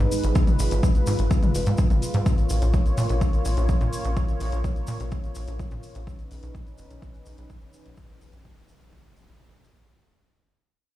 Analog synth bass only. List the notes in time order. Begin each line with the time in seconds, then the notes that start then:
0.00 G#2
0.24 G#1
0.59 G#1
0.71 G#1
1.07 G#2
1.19 G#1
1.55 F#1
1.67 G#2
1.90 G#1
2.14 G#2
2.50 A#1
2.62 A#1
2.98 A#2
3.10 A#1
3.45 A#1
3.57 A#1
3.81 A#2
4.05 A#1
4.40 A#1
4.52 A#1
4.88 A#2
5.00 A#1
5.36 A#1
5.48 A#1
5.71 A#2
5.95 A#1
6.31 B1
6.43 B1
6.78 F#1
6.90 B1
7.26 B1
7.38 B1
7.62 F#1
7.86 B1
8.21 B1
8.33 B1
8.69 F#1
8.81 B1
9.16 B1
9.28 B1
9.52 B1
9.76 B1